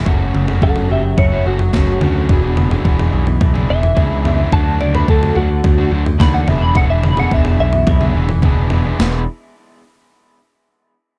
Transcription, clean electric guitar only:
X:1
M:4/4
L:1/16
Q:1/4=107
K:Emix
V:1 name="Clean electric guitar"
z4 [Af]2 [=Ge]2 [Ec]2 F6- | F6 z4 e6 | a2 d B A2 F4 z2 b f e b | f e b f e2 e4 z6 |
z16 |]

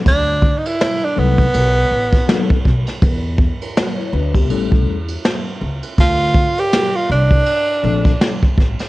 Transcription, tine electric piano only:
X:1
M:4/4
L:1/16
Q:"Swing 16ths" 1/4=81
K:Aphr
V:1 name="Tine electric piano"
z16 | z4 z [E^c] [D=B] [=B,G]2 z6 z | z16 |]
V:2 name="Tine electric piano"
z6 [^F,A,=B,_EA]2 z4 [F,A,B,^DA]2 z2 | z8 [G,A,^CEA]2 z6 | z8 z2 [F,A,CDA]2 z4 |]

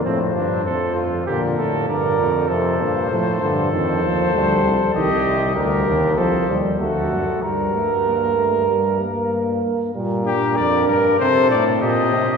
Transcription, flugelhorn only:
X:1
M:4/4
L:1/8
Q:1/4=97
K:Fdor
V:1 name="Flugelhorn"
C D =A F G A B2 | =A2 A6 | [K:Gm] G2 G2 A z ^F2 | B6- B z |
B4 A2 G2 |]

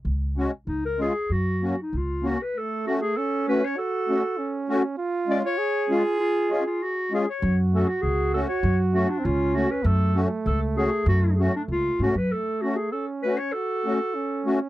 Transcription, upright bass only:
X:1
M:2/4
L:1/16
Q:1/4=98
K:F#
V:1 name="Upright bass" clef=bass
C,,4 C,,4 | F,,4 C,,4 | [K:F#m] z8 | z8 |
z8 | z8 | F,,4 C,,4 | F,,4 C,,4 |
F,,4 C,,4 | F,,4 C,,2 G,, F,, | z8 | z8 |]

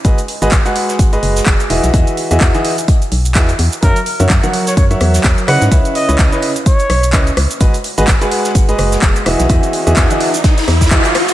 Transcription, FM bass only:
X:1
M:4/4
L:1/16
Q:"Swing 16ths" 1/4=127
K:Elyd
V:1 name="FM bass" clef=bass
G,,, z2 G,,, G,,, z3 G,,, z F,,, z F,,, z E,,, B,,, | E,, z2 E,, E,, z4 z B,,,2 E,, z E,, z | F,, z2 F,, F,, z3 F,, z E,, z E,, z C, G,, | C,, z2 C,, C,, z4 z B,,,2 C,, z C,, z |
G,,, z2 G,,, G,,, z3 G,,, z F,,, z F,,, z E,,, B,,, | E,, z2 E,, E,, z4 z E,,3 z3 |]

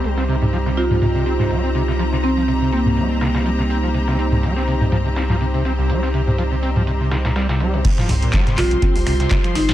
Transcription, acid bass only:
X:1
M:4/4
L:1/16
Q:"Swing 16ths" 1/4=123
K:Cm
V:1 name="Acid bass" clef=bass
G, C C, C, F, C, C F, C, C, C C,, G, C C, C, | F, C, C F, C, C, C C,, G, C C, C, F, C, C F, | C, C, C C,, G, C C, C, F, C, C F, C, C, C C,, | G, C C, C, F, C, C F, C, C, C, B,, G, C, G, B,, |
C, F, C, B,, G, C, C, C,, C C, C, C, C, F, C, B,, |]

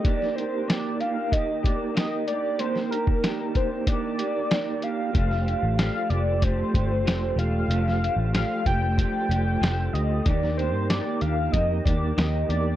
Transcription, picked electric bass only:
X:1
M:4/4
L:1/16
Q:1/4=94
K:Eblyd
V:1 name="Picked electric bass" clef=bass
z16 | z16 | F,,,3 A,,,2 z F,,,4 G,,,2 F,,,2 =E,,,2 | F,,,3 A,,,2 z F,,,3 z F,,,2 F,,,2 D,,2 |
E,,3 G,,2 z E,,2 F,,2 E,,2 E,,2 =E,,2 |]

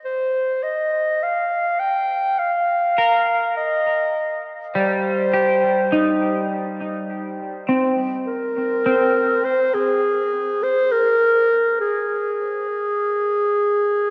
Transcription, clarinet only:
X:1
M:4/4
L:1/16
Q:1/4=51
K:Ab
V:1 name="Clarinet"
c2 e2 f2 g2 f4 e3 z | c6 z6 B4 | c A3 c B3 A8 |]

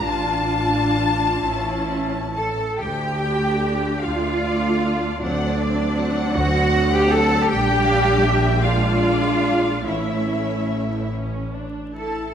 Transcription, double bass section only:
X:1
M:6/8
L:1/16
Q:3/8=49
K:Dm
V:1 name="Double bass section" clef=bass
A,,,6 A,,,4- A,,, z | D,,6 D,,6 | D,,6 D,,6 | B,,,12 |
A,,,8- A,,,3 z |]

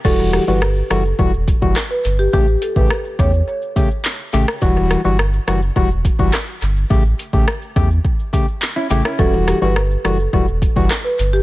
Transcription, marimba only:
X:1
M:4/4
L:1/16
Q:1/4=105
K:Edor
V:1 name="Marimba"
A z G B z2 A z6 B z G | G z A B z2 c z8 z | z16 | z16 |
A z G B z2 A z6 B z G |]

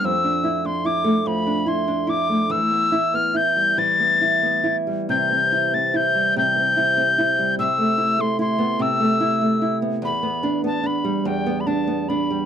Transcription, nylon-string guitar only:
X:1
M:6/8
L:1/16
Q:3/8=49
K:Ephr
V:1 name="Nylon-string guitar"
F,, D E D E A, F,, D E D E A, | E, B, E B, E G, E, B, E B, E G, | C, C E C E G, C, C E C E G, | C, A, E A, E B, C, A, E A, E B, |
E,, B, D B, D G, E,, B, D B, D G, |]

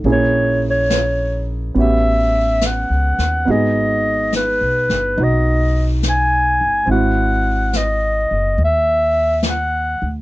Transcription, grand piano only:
X:1
M:4/4
L:1/8
Q:"Swing" 1/4=70
K:G#phr
V:1 name="Grand piano"
[^A,CEG]4 [B,CF=G]4 | [B,DFG]4 [DF]4 | [^B,EF]8 |]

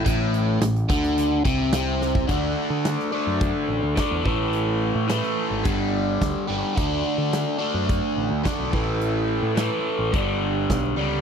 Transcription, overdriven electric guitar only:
X:1
M:4/4
L:1/8
Q:1/4=107
K:Dlyd
V:1 name="Overdriven electric guitar" clef=bass
A,,2 A,, D,2 =C, C,2 | [D,A,D]3 [D,A,D]3 [D,A,D] [A,,E,A,]- | [A,,E,A,]2 [A,,E,A,]2 [=G,,D,=G,]3 [G,,D,G,] | [D,A,D]3 [D,A,D]3 [D,A,D] [A,,E,A,]- |
[A,,E,A,]2 [A,,E,A,]2 [=G,,D,=G,]3 [G,,D,G,] |]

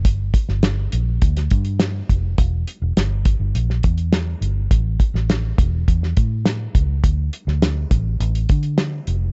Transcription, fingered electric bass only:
X:1
M:4/4
L:1/16
Q:1/4=103
K:Dm
V:1 name="Fingered electric bass" clef=bass
G,,,2 z G,,,3 B,,,2 D,,2 G,,4 F,,,2 | E,,,2 z E,,, G,,,3 G,,, B,,,2 E,,4 G,,,2 | A,,,2 z A,,,3 E,,,2 E,,2 A,,4 ^C,,2 | D,,2 z D,,3 A,,,2 A,,,2 D,4 F,,,2 |]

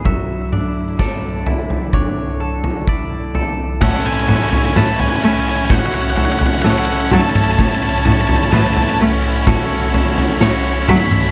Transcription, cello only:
X:1
M:4/4
L:1/8
Q:1/4=64
K:A
V:1 name="Cello" clef=bass
F,,8 | A,, A,, A,, A, A,,2 A,, F, | A,, A,, A,, A, A,,2 A,, F, |]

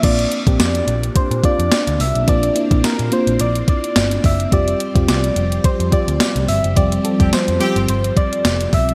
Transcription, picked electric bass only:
X:1
M:4/4
L:1/16
Q:"Swing 16ths" 1/4=107
K:Bblyd
V:1 name="Picked electric bass" clef=bass
B,,,2 z B,,, F,,2 B,,,2 z B,, z F,, z D,, C,, =B,,, | B,,,2 z B,,, z B,, z B,,, B,,,2 z2 G,,,2 _G,,,2 | F,,,2 z F,,, C,,2 F,,,2 z F,, z D,, z C,, G,,, _G,,, | F,,,2 z F,,, z F,, z G,,, G,,,2 z2 F,,,2 =B,,,2 |]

